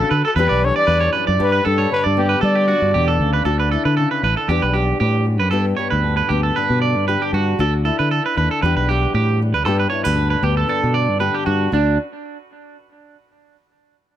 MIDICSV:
0, 0, Header, 1, 6, 480
1, 0, Start_track
1, 0, Tempo, 516351
1, 1295, Time_signature, 4, 2, 24, 8
1, 13169, End_track
2, 0, Start_track
2, 0, Title_t, "Clean electric guitar"
2, 0, Program_c, 0, 27
2, 99, Note_on_c, 0, 71, 83
2, 222, Note_off_c, 0, 71, 0
2, 230, Note_on_c, 0, 69, 82
2, 329, Note_off_c, 0, 69, 0
2, 333, Note_on_c, 0, 71, 100
2, 453, Note_off_c, 0, 71, 0
2, 457, Note_on_c, 0, 74, 82
2, 566, Note_off_c, 0, 74, 0
2, 704, Note_on_c, 0, 74, 78
2, 804, Note_off_c, 0, 74, 0
2, 808, Note_on_c, 0, 71, 89
2, 930, Note_off_c, 0, 71, 0
2, 934, Note_on_c, 0, 73, 84
2, 1043, Note_off_c, 0, 73, 0
2, 1047, Note_on_c, 0, 71, 84
2, 1173, Note_off_c, 0, 71, 0
2, 1182, Note_on_c, 0, 74, 74
2, 1410, Note_off_c, 0, 74, 0
2, 1416, Note_on_c, 0, 71, 83
2, 1524, Note_off_c, 0, 71, 0
2, 1532, Note_on_c, 0, 69, 83
2, 1654, Note_on_c, 0, 73, 80
2, 1655, Note_off_c, 0, 69, 0
2, 1886, Note_off_c, 0, 73, 0
2, 1894, Note_on_c, 0, 74, 69
2, 2125, Note_off_c, 0, 74, 0
2, 2128, Note_on_c, 0, 71, 75
2, 2238, Note_off_c, 0, 71, 0
2, 2242, Note_on_c, 0, 69, 92
2, 2370, Note_off_c, 0, 69, 0
2, 2373, Note_on_c, 0, 67, 74
2, 2482, Note_off_c, 0, 67, 0
2, 2489, Note_on_c, 0, 66, 79
2, 2719, Note_off_c, 0, 66, 0
2, 2734, Note_on_c, 0, 67, 86
2, 2856, Note_off_c, 0, 67, 0
2, 2860, Note_on_c, 0, 69, 76
2, 3089, Note_off_c, 0, 69, 0
2, 3099, Note_on_c, 0, 71, 68
2, 3205, Note_off_c, 0, 71, 0
2, 3210, Note_on_c, 0, 69, 83
2, 3334, Note_off_c, 0, 69, 0
2, 3342, Note_on_c, 0, 71, 69
2, 3446, Note_off_c, 0, 71, 0
2, 3453, Note_on_c, 0, 69, 75
2, 3576, Note_off_c, 0, 69, 0
2, 3581, Note_on_c, 0, 71, 67
2, 3685, Note_off_c, 0, 71, 0
2, 3689, Note_on_c, 0, 69, 82
2, 3813, Note_off_c, 0, 69, 0
2, 3821, Note_on_c, 0, 71, 66
2, 3926, Note_off_c, 0, 71, 0
2, 3941, Note_on_c, 0, 71, 72
2, 4059, Note_off_c, 0, 71, 0
2, 4063, Note_on_c, 0, 69, 69
2, 4167, Note_off_c, 0, 69, 0
2, 4172, Note_on_c, 0, 67, 88
2, 4295, Note_off_c, 0, 67, 0
2, 4297, Note_on_c, 0, 71, 67
2, 4402, Note_on_c, 0, 67, 68
2, 4405, Note_off_c, 0, 71, 0
2, 4635, Note_off_c, 0, 67, 0
2, 4649, Note_on_c, 0, 67, 77
2, 4879, Note_off_c, 0, 67, 0
2, 5015, Note_on_c, 0, 71, 69
2, 5115, Note_off_c, 0, 71, 0
2, 5119, Note_on_c, 0, 69, 84
2, 5249, Note_off_c, 0, 69, 0
2, 5360, Note_on_c, 0, 73, 75
2, 5485, Note_off_c, 0, 73, 0
2, 5489, Note_on_c, 0, 71, 66
2, 5722, Note_off_c, 0, 71, 0
2, 5733, Note_on_c, 0, 71, 70
2, 5844, Note_off_c, 0, 71, 0
2, 5845, Note_on_c, 0, 67, 73
2, 5973, Note_off_c, 0, 67, 0
2, 5980, Note_on_c, 0, 69, 73
2, 6088, Note_off_c, 0, 69, 0
2, 6098, Note_on_c, 0, 71, 86
2, 6325, Note_off_c, 0, 71, 0
2, 6336, Note_on_c, 0, 74, 71
2, 6565, Note_off_c, 0, 74, 0
2, 6580, Note_on_c, 0, 71, 86
2, 6702, Note_off_c, 0, 71, 0
2, 6711, Note_on_c, 0, 67, 74
2, 6814, Note_off_c, 0, 67, 0
2, 6824, Note_on_c, 0, 66, 78
2, 7049, Note_off_c, 0, 66, 0
2, 7067, Note_on_c, 0, 69, 89
2, 7186, Note_off_c, 0, 69, 0
2, 7298, Note_on_c, 0, 69, 82
2, 7421, Note_off_c, 0, 69, 0
2, 7426, Note_on_c, 0, 71, 70
2, 7532, Note_off_c, 0, 71, 0
2, 7542, Note_on_c, 0, 69, 89
2, 7664, Note_off_c, 0, 69, 0
2, 7675, Note_on_c, 0, 71, 70
2, 7774, Note_off_c, 0, 71, 0
2, 7785, Note_on_c, 0, 71, 74
2, 7906, Note_off_c, 0, 71, 0
2, 7912, Note_on_c, 0, 69, 75
2, 8013, Note_off_c, 0, 69, 0
2, 8017, Note_on_c, 0, 71, 89
2, 8138, Note_off_c, 0, 71, 0
2, 8149, Note_on_c, 0, 71, 72
2, 8254, Note_off_c, 0, 71, 0
2, 8262, Note_on_c, 0, 67, 77
2, 8489, Note_off_c, 0, 67, 0
2, 8504, Note_on_c, 0, 67, 80
2, 8730, Note_off_c, 0, 67, 0
2, 8869, Note_on_c, 0, 71, 73
2, 8968, Note_off_c, 0, 71, 0
2, 8971, Note_on_c, 0, 69, 95
2, 9099, Note_off_c, 0, 69, 0
2, 9105, Note_on_c, 0, 71, 75
2, 9196, Note_off_c, 0, 71, 0
2, 9200, Note_on_c, 0, 73, 80
2, 9330, Note_off_c, 0, 73, 0
2, 9334, Note_on_c, 0, 71, 71
2, 9567, Note_off_c, 0, 71, 0
2, 9578, Note_on_c, 0, 71, 69
2, 9689, Note_off_c, 0, 71, 0
2, 9701, Note_on_c, 0, 67, 76
2, 9823, Note_off_c, 0, 67, 0
2, 9827, Note_on_c, 0, 69, 79
2, 9930, Note_off_c, 0, 69, 0
2, 9941, Note_on_c, 0, 69, 91
2, 10169, Note_off_c, 0, 69, 0
2, 10170, Note_on_c, 0, 74, 71
2, 10404, Note_off_c, 0, 74, 0
2, 10413, Note_on_c, 0, 71, 83
2, 10540, Note_off_c, 0, 71, 0
2, 10546, Note_on_c, 0, 67, 73
2, 10651, Note_off_c, 0, 67, 0
2, 10654, Note_on_c, 0, 66, 82
2, 10886, Note_off_c, 0, 66, 0
2, 10907, Note_on_c, 0, 62, 81
2, 11128, Note_off_c, 0, 62, 0
2, 13169, End_track
3, 0, Start_track
3, 0, Title_t, "Trumpet"
3, 0, Program_c, 1, 56
3, 0, Note_on_c, 1, 69, 96
3, 191, Note_off_c, 1, 69, 0
3, 246, Note_on_c, 1, 69, 85
3, 291, Note_off_c, 1, 69, 0
3, 354, Note_on_c, 1, 71, 99
3, 602, Note_on_c, 1, 73, 104
3, 616, Note_off_c, 1, 71, 0
3, 718, Note_off_c, 1, 73, 0
3, 724, Note_on_c, 1, 74, 108
3, 1040, Note_off_c, 1, 74, 0
3, 1327, Note_on_c, 1, 71, 94
3, 1534, Note_off_c, 1, 71, 0
3, 1548, Note_on_c, 1, 69, 89
3, 1764, Note_off_c, 1, 69, 0
3, 1787, Note_on_c, 1, 71, 93
3, 1892, Note_off_c, 1, 71, 0
3, 2027, Note_on_c, 1, 67, 95
3, 2243, Note_off_c, 1, 67, 0
3, 2271, Note_on_c, 1, 74, 97
3, 2944, Note_off_c, 1, 74, 0
3, 13169, End_track
4, 0, Start_track
4, 0, Title_t, "Nylon-string guitar"
4, 0, Program_c, 2, 24
4, 0, Note_on_c, 2, 49, 72
4, 0, Note_on_c, 2, 50, 84
4, 0, Note_on_c, 2, 66, 72
4, 97, Note_off_c, 2, 49, 0
4, 97, Note_off_c, 2, 50, 0
4, 311, Note_off_c, 2, 66, 0
4, 342, Note_on_c, 2, 40, 84
4, 348, Note_on_c, 2, 52, 69
4, 357, Note_on_c, 2, 55, 70
4, 369, Note_on_c, 2, 67, 79
4, 593, Note_on_c, 2, 62, 66
4, 800, Note_off_c, 2, 40, 0
4, 811, Note_on_c, 2, 40, 71
4, 1048, Note_off_c, 2, 40, 0
4, 1052, Note_on_c, 2, 42, 64
4, 1273, Note_off_c, 2, 52, 0
4, 1284, Note_off_c, 2, 67, 0
4, 1289, Note_off_c, 2, 42, 0
4, 1293, Note_on_c, 2, 43, 85
4, 1300, Note_on_c, 2, 67, 80
4, 1533, Note_off_c, 2, 62, 0
4, 1537, Note_on_c, 2, 62, 63
4, 1773, Note_on_c, 2, 50, 66
4, 2013, Note_off_c, 2, 55, 0
4, 2016, Note_on_c, 2, 59, 60
4, 2251, Note_off_c, 2, 43, 0
4, 2486, Note_off_c, 2, 62, 0
4, 2497, Note_on_c, 2, 62, 65
4, 2741, Note_on_c, 2, 47, 72
4, 2976, Note_off_c, 2, 47, 0
4, 2984, Note_on_c, 2, 49, 64
4, 3187, Note_off_c, 2, 59, 0
4, 3188, Note_off_c, 2, 62, 0
4, 3188, Note_off_c, 2, 67, 0
4, 3191, Note_off_c, 2, 50, 0
4, 3202, Note_on_c, 2, 50, 71
4, 3212, Note_on_c, 2, 62, 62
4, 3217, Note_on_c, 2, 66, 68
4, 3218, Note_off_c, 2, 49, 0
4, 3454, Note_off_c, 2, 66, 0
4, 3470, Note_on_c, 2, 64, 54
4, 3701, Note_on_c, 2, 49, 57
4, 3927, Note_off_c, 2, 50, 0
4, 3936, Note_off_c, 2, 49, 0
4, 3944, Note_on_c, 2, 50, 60
4, 4174, Note_on_c, 2, 40, 74
4, 4179, Note_off_c, 2, 50, 0
4, 4179, Note_on_c, 2, 55, 65
4, 4180, Note_off_c, 2, 62, 0
4, 4181, Note_off_c, 2, 64, 0
4, 4183, Note_on_c, 2, 62, 61
4, 4190, Note_on_c, 2, 67, 66
4, 4404, Note_off_c, 2, 67, 0
4, 4415, Note_on_c, 2, 67, 57
4, 4634, Note_off_c, 2, 40, 0
4, 4645, Note_on_c, 2, 40, 62
4, 4887, Note_off_c, 2, 40, 0
4, 4891, Note_on_c, 2, 42, 61
4, 5109, Note_off_c, 2, 67, 0
4, 5119, Note_off_c, 2, 42, 0
4, 5123, Note_on_c, 2, 43, 78
4, 5131, Note_off_c, 2, 55, 0
4, 5135, Note_on_c, 2, 59, 62
4, 5137, Note_off_c, 2, 62, 0
4, 5140, Note_on_c, 2, 62, 60
4, 5141, Note_on_c, 2, 67, 71
4, 5371, Note_off_c, 2, 67, 0
4, 5382, Note_on_c, 2, 67, 54
4, 5610, Note_on_c, 2, 50, 59
4, 5850, Note_off_c, 2, 59, 0
4, 5861, Note_on_c, 2, 59, 58
4, 6091, Note_off_c, 2, 43, 0
4, 6102, Note_on_c, 2, 43, 64
4, 6109, Note_off_c, 2, 62, 0
4, 6112, Note_on_c, 2, 62, 59
4, 6572, Note_off_c, 2, 50, 0
4, 6577, Note_off_c, 2, 67, 0
4, 6583, Note_on_c, 2, 50, 64
4, 6588, Note_on_c, 2, 67, 67
4, 6819, Note_off_c, 2, 62, 0
4, 6823, Note_on_c, 2, 62, 58
4, 7034, Note_off_c, 2, 43, 0
4, 7034, Note_off_c, 2, 59, 0
4, 7037, Note_off_c, 2, 67, 0
4, 7041, Note_off_c, 2, 50, 0
4, 7056, Note_off_c, 2, 62, 0
4, 7059, Note_on_c, 2, 62, 67
4, 7065, Note_on_c, 2, 66, 73
4, 7293, Note_off_c, 2, 66, 0
4, 7297, Note_on_c, 2, 64, 58
4, 7774, Note_on_c, 2, 50, 63
4, 8017, Note_off_c, 2, 50, 0
4, 8019, Note_off_c, 2, 64, 0
4, 8027, Note_on_c, 2, 40, 80
4, 8032, Note_on_c, 2, 55, 63
4, 8035, Note_off_c, 2, 62, 0
4, 8039, Note_on_c, 2, 62, 64
4, 8045, Note_on_c, 2, 67, 70
4, 8269, Note_off_c, 2, 67, 0
4, 8280, Note_on_c, 2, 67, 64
4, 8747, Note_off_c, 2, 55, 0
4, 8758, Note_on_c, 2, 55, 57
4, 8964, Note_off_c, 2, 67, 0
4, 8978, Note_off_c, 2, 40, 0
4, 8982, Note_off_c, 2, 55, 0
4, 8982, Note_on_c, 2, 43, 76
4, 8986, Note_on_c, 2, 59, 64
4, 8993, Note_off_c, 2, 62, 0
4, 8997, Note_on_c, 2, 62, 66
4, 9002, Note_on_c, 2, 67, 73
4, 9214, Note_off_c, 2, 67, 0
4, 9217, Note_on_c, 2, 64, 59
4, 9340, Note_off_c, 2, 64, 0
4, 9340, Note_on_c, 2, 67, 54
4, 9441, Note_on_c, 2, 50, 65
4, 9683, Note_off_c, 2, 59, 0
4, 9694, Note_on_c, 2, 59, 59
4, 9916, Note_off_c, 2, 43, 0
4, 9925, Note_off_c, 2, 62, 0
4, 9928, Note_on_c, 2, 43, 70
4, 9936, Note_on_c, 2, 62, 62
4, 10394, Note_off_c, 2, 50, 0
4, 10405, Note_on_c, 2, 50, 68
4, 10406, Note_off_c, 2, 67, 0
4, 10418, Note_on_c, 2, 67, 65
4, 10642, Note_off_c, 2, 62, 0
4, 10653, Note_on_c, 2, 62, 58
4, 10868, Note_off_c, 2, 43, 0
4, 10871, Note_off_c, 2, 62, 0
4, 10872, Note_off_c, 2, 59, 0
4, 10873, Note_off_c, 2, 67, 0
4, 10879, Note_off_c, 2, 50, 0
4, 10891, Note_on_c, 2, 50, 71
4, 10895, Note_on_c, 2, 57, 63
4, 10911, Note_on_c, 2, 62, 65
4, 10915, Note_on_c, 2, 66, 62
4, 11114, Note_off_c, 2, 50, 0
4, 11117, Note_off_c, 2, 57, 0
4, 11124, Note_off_c, 2, 62, 0
4, 11126, Note_off_c, 2, 66, 0
4, 13169, End_track
5, 0, Start_track
5, 0, Title_t, "Fingered electric bass"
5, 0, Program_c, 3, 33
5, 103, Note_on_c, 3, 50, 94
5, 200, Note_off_c, 3, 50, 0
5, 334, Note_on_c, 3, 40, 115
5, 434, Note_off_c, 3, 40, 0
5, 474, Note_on_c, 3, 35, 107
5, 654, Note_off_c, 3, 35, 0
5, 814, Note_on_c, 3, 40, 113
5, 998, Note_off_c, 3, 40, 0
5, 1192, Note_on_c, 3, 42, 93
5, 1273, Note_off_c, 3, 42, 0
5, 1302, Note_on_c, 3, 43, 114
5, 1482, Note_off_c, 3, 43, 0
5, 1546, Note_on_c, 3, 43, 89
5, 1725, Note_off_c, 3, 43, 0
5, 1915, Note_on_c, 3, 43, 80
5, 2178, Note_off_c, 3, 43, 0
5, 2256, Note_on_c, 3, 55, 119
5, 2537, Note_off_c, 3, 55, 0
5, 2622, Note_on_c, 3, 43, 95
5, 2732, Note_off_c, 3, 43, 0
5, 2741, Note_on_c, 3, 40, 89
5, 2953, Note_off_c, 3, 40, 0
5, 2970, Note_on_c, 3, 38, 86
5, 3187, Note_off_c, 3, 38, 0
5, 3209, Note_on_c, 3, 38, 95
5, 3493, Note_off_c, 3, 38, 0
5, 3582, Note_on_c, 3, 50, 82
5, 3765, Note_off_c, 3, 50, 0
5, 3934, Note_on_c, 3, 33, 78
5, 4033, Note_off_c, 3, 33, 0
5, 4170, Note_on_c, 3, 40, 103
5, 4270, Note_off_c, 3, 40, 0
5, 4304, Note_on_c, 3, 35, 92
5, 4572, Note_off_c, 3, 35, 0
5, 4655, Note_on_c, 3, 45, 102
5, 5025, Note_off_c, 3, 45, 0
5, 5025, Note_on_c, 3, 42, 90
5, 5143, Note_off_c, 3, 42, 0
5, 5143, Note_on_c, 3, 43, 94
5, 5323, Note_off_c, 3, 43, 0
5, 5504, Note_on_c, 3, 38, 85
5, 5773, Note_off_c, 3, 38, 0
5, 5858, Note_on_c, 3, 38, 82
5, 6041, Note_off_c, 3, 38, 0
5, 6227, Note_on_c, 3, 47, 83
5, 6467, Note_off_c, 3, 47, 0
5, 6467, Note_on_c, 3, 43, 80
5, 6651, Note_off_c, 3, 43, 0
5, 6813, Note_on_c, 3, 43, 84
5, 6999, Note_off_c, 3, 43, 0
5, 7057, Note_on_c, 3, 38, 102
5, 7340, Note_off_c, 3, 38, 0
5, 7433, Note_on_c, 3, 50, 81
5, 7615, Note_off_c, 3, 50, 0
5, 7782, Note_on_c, 3, 39, 85
5, 7880, Note_off_c, 3, 39, 0
5, 8021, Note_on_c, 3, 40, 109
5, 8120, Note_off_c, 3, 40, 0
5, 8147, Note_on_c, 3, 35, 93
5, 8416, Note_off_c, 3, 35, 0
5, 8499, Note_on_c, 3, 45, 101
5, 8867, Note_off_c, 3, 45, 0
5, 8867, Note_on_c, 3, 38, 90
5, 8978, Note_off_c, 3, 38, 0
5, 8978, Note_on_c, 3, 43, 100
5, 9163, Note_off_c, 3, 43, 0
5, 9355, Note_on_c, 3, 38, 89
5, 9621, Note_off_c, 3, 38, 0
5, 9693, Note_on_c, 3, 38, 93
5, 9880, Note_off_c, 3, 38, 0
5, 10072, Note_on_c, 3, 47, 87
5, 10307, Note_off_c, 3, 47, 0
5, 10307, Note_on_c, 3, 43, 88
5, 10492, Note_off_c, 3, 43, 0
5, 10660, Note_on_c, 3, 43, 88
5, 10844, Note_off_c, 3, 43, 0
5, 10899, Note_on_c, 3, 38, 96
5, 11124, Note_off_c, 3, 38, 0
5, 13169, End_track
6, 0, Start_track
6, 0, Title_t, "Muted nylon-string guitar strokes"
6, 362, Note_on_c, 9, 29, 72
6, 454, Note_off_c, 9, 29, 0
6, 2265, Note_on_c, 9, 29, 69
6, 2358, Note_off_c, 9, 29, 0
6, 7053, Note_on_c, 9, 29, 78
6, 7146, Note_off_c, 9, 29, 0
6, 13169, End_track
0, 0, End_of_file